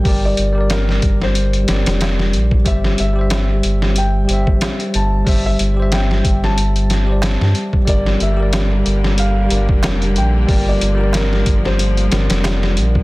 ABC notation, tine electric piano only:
X:1
M:4/4
L:1/16
Q:"Swing 16ths" 1/4=92
K:Gdor
V:1 name="Tine electric piano"
[G,GBd]3 [G,GBd]6- [G,GBd] [G,GBd]6 | [G,Gce]3 [G,Gce]6- [G,Gce] [G,Gce]6 | [G,Gce]3 [G,Gce]6- [G,Gce] z [G,Gcd]4- [G,Gcd] | [G,GBd]3 [G,GBd]6- [G,GBd] [G,GBd]6 |
[G,GBd]3 [G,GBd]6- [G,GBd] [G,GBd]6 |]